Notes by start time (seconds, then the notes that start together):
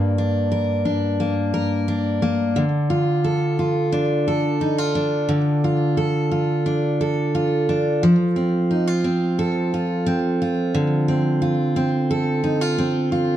Already playing: G2 A#3 D4 A#4
0.18 D4
0.52 A#4
0.85 D4
1.20 A#3
1.54 A#4
1.88 D4
2.22 A#3
2.56 D3
2.90 F4
3.24 A4
3.59 F4
3.92 D4
4.28 A4
4.61 D#4
4.78 F4
4.95 D4
5.29 D3
5.64 F4
5.97 A4
6.31 F4
6.66 D4
7.01 A4
7.35 F4
7.69 D4
8.03 F3
8.36 C4
8.71 D#4
8.87 F4
9.04 C4
9.39 A4
9.74 F4
10.06 C4
10.42 F4
10.75 D3
11.08 C4
11.42 F4
11.76 C4
12.11 A4
12.44 D#4
12.61 F4
12.78 C4
13.12 F4